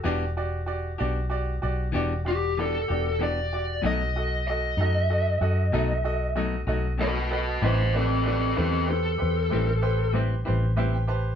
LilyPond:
<<
  \new Staff \with { instrumentName = "Lead electric guitar" } { \time 12/8 \key e \minor \tempo 4. = 63 r2. r8 g'8 a'4 d''4 | dis''4 dis''2. r4 <b' dis''>8 <b' dis''>8 | <c'' dis''>8 <c' a'>8 <c' a'>8 <c' a'>8 a'2 r2 | }
  \new Staff \with { instrumentName = "Upright piano" } { \time 12/8 \key e \minor << { r1. | r1. | r1 r4 e''16 g''16 a''8 | } \\ { <fis' g' d''>8 <fis' g' d''>8 <fis' g' d''>8 <fis' g' d''>8 <fis' g' d''>8 <fis' g' d''>8 <fis' g' d''>8 <fis' g' d''>8 <fis' g' d''>8 <fis' g' d''>8 <fis' g' d''>8 <fis' g' d''>8 | <fis' a' dis''>8 <fis' a' dis''>8 <fis' a' dis''>8 <fis' a' dis''>8 <fis' a' dis''>8 <fis' a' dis''>8 <fis' a' dis''>8 <fis' a' dis''>8 <fis' a' dis''>8 <fis' a' dis''>8 <fis' a' dis''>8 <fis' a' b'>8 | <g' b' c''>8 <g' b' d''>8 <g' b' d''>8 <g' b' c''>8 <g' b' c''>8 <g' b' c''>8 <g' b' c''>8 <g' b' c''>8 <g' b' c''>8 <g' b' c''>8 <g' b' c''>8 <g' b' c''>8 | } >> }
  \new Staff \with { instrumentName = "Clean electric guitar" } { \time 12/8 \key e \minor <e b d' g'>8 r4 <b d' g'>8 r4 <e b d' g'>8 r8 <e b d' g'>8 <b d' g'>8 <e b d' g'>8 r8 | <b, fis a dis'>8 r4 <fis a dis'>8 r4 <b, fis a dis'>8 r8 <b, fis a dis'>8 <fis a dis'>8 <b, fis a dis'>8 r8 | <a, g c' e'>8 r4 <g c' e'>8 r4 <a, g c' e'>8 r8 <a, g c' e'>8 <g c' e'>8 <a, g c' e'>8 r8 | }
  \new Staff \with { instrumentName = "Fingered electric bass" } { \clef bass \time 12/8 \key e \minor e,,4. b,,4 b,,8 e,,4. e,,4. | b,,4. fis,4 fis,8 b,,4. b,,4. | a,,4. e,4 e,8 a,,4. a,,4. | }
>>